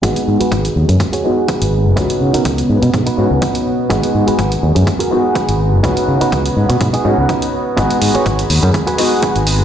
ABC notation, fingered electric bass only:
X:1
M:4/4
L:1/16
Q:"Swing 16ths" 1/4=124
K:G#m
V:1 name="Fingered electric bass" clef=bass
G,,, z G,, z G,,, z D,, F,, z4 z G,,,2 F,,, | C,, z C, z C,, z G,, B,, G,, z G,, C,, z4 | G,,, z G,, z G,,, z D,, F,, z4 z G,,,2 F,,, | C,, z C, z C,, z G,, B,, G,, z G,, C,, z4 |
G,,, z G,, z G,,, z D,, F,, z4 z G,,,2 F,,, |]